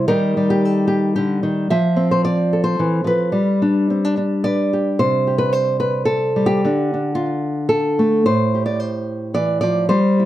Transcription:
0.08 D#3 G3 D#4 G4 A#4
0.37 G3
0.50 G4
0.65 A4
0.88 G4
1.16 D3 G4
1.43 D#3
1.70 F3 E5
1.96 C4
2.11 C5
2.25 D5
2.53 A4
2.64 C5
2.79 E3
3.04 F3 B4
3.32 G3
3.62 D4
3.90 C4
4.05 D4
4.17 D4
4.44 B4 D5
4.73 G4
4.99 C3 C5
5.27 G4
5.38 B4
5.53 C5
5.80 B4
6.05 A4
6.36 G3
6.46 G4
6.65 D3 D4
6.94 D4
7.15 F4
7.69 A4
7.99 A3
8.26 A2 C5
8.54 G4
8.66 D5
8.80 C5
9.34 E3 D5
9.61 F3 D5
9.89 G3 C5
10.20 E4

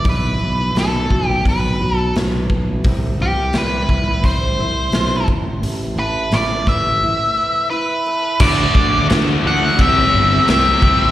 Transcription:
Already playing: E3 E4
0.04 B1 B2, kick, open hi-hat
0.09 B4
0.39 B1 E3
0.75 B1 F#3, snare, open hi-hat
0.79 A4
1.10 B1 F#4, kick
1.27 G4
1.45 B1 B3 B4, kick, open hi-hat
1.80 B1 F#4
1.97 A4
2.16 B1 B3, snare, open hi-hat
2.50 B1 E3, kick
2.84 C2 C3, kick, open hi-hat
3.20 C2 E3 G4
3.53 C2 G3, snare, open hi-hat
3.58 B4
3.89 C2 E4, kick
4.24 C2 C4 C5, kick, open hi-hat
4.58 C2 E4
4.92 B1 C4, snare, open hi-hat
5.28 A1 A2, kick
5.63 A1 A2, open hi-hat
5.97 A1 A3 B4
6.32 A1 C4 D5, snare, open hi-hat
6.67 A1 B4 E5, kick, snare
7.04 E4
7.37 B4
7.70 E4 B4
8.06 A3
8.40 D2 D3 A3 D4 D5, kick, crash
8.75 D2, kick
9.08 D2 D3 A3 D4, snare, crash
9.44 D2 D3 A3 D4 F#5
9.77 C2 C3 G3 C4, kick, crash
9.81 E5
10.14 G1
10.46 C2 C3 G3 C4 E5, snare, crash
10.82 C2 C3 G3 C4, kick

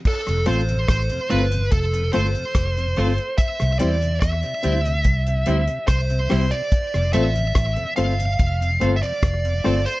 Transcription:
0.05 A4, kick, crash
0.27 F1 F2 C3, cross-stick, closed hi-hat
0.46 A1 A3 C4 F4 A4 C5, closed hi-hat
0.69 F2 C3, closed hi-hat
0.88 A1 C5, kick, cross-stick, closed hi-hat
1.10 F2 C3 A4 C5, closed hi-hat
1.30 G1 A3 C4 F4 A4 B4 C5, closed hi-hat
1.52 F2 C3, closed hi-hat
1.72 F1 A4, kick, closed hi-hat
1.94 F2 C3, closed hi-hat
2.13 G1 A3 C4 F4 A4 C5, closed hi-hat
2.35 F2 C3, closed hi-hat
2.55 F1, kick, cross-stick, closed hi-hat
2.77 F2 C3, closed hi-hat
2.96 G1 A3 C4 F4 A4 C5, cross-stick, open hi-hat
3.18 A4 C5, closed hi-hat
3.38 E5, kick, closed hi-hat
3.60 C2 C3, cross-stick, closed hi-hat
3.79 E2 G3 C4 E4 G4 C5 D5, closed hi-hat
4.02 C3, closed hi-hat
4.21 E2 E5, kick, cross-stick, closed hi-hat
4.43 C3 G4 C5, closed hi-hat
4.63 D2 G3 C4 E4 G4 C5, closed hi-hat
4.85 C3, closed hi-hat
5.04 C2, kick, closed hi-hat
5.27 C3, closed hi-hat
5.46 D2 G3 C4 E4 G4 C5, closed hi-hat
5.67 C3, closed hi-hat
5.87 C2 C5, kick, cross-stick, closed hi-hat
6.10 C3, closed hi-hat
6.29 C2 G3 C4 E4 G4 C5, cross-stick, open hi-hat
6.51 C3 D5, closed hi-hat
6.72 kick, closed hi-hat
6.94 F1 F2 C3, cross-stick, closed hi-hat
7.13 A1 A3 C4 F4 A4 C5 E5, closed hi-hat
7.35 F2 C3, closed hi-hat
7.55 A1, kick, cross-stick, closed hi-hat
7.76 F2 C3 A4 C5, closed hi-hat
7.96 G1 A3 C4 F4 A4 C5 F5, closed hi-hat
8.20 F2 C3, closed hi-hat
8.39 F1, kick, closed hi-hat
8.61 F2 C3, closed hi-hat
8.80 G1 A3 C4 F4 A4 C5, closed hi-hat
8.96 E5
9.03 F2 C3 D5, closed hi-hat
9.23 F1, kick, cross-stick, closed hi-hat
9.45 F2 C3, closed hi-hat
9.64 G1 A3 C4 F4 A4 C5, cross-stick, open hi-hat
9.86 A4 C5, closed hi-hat

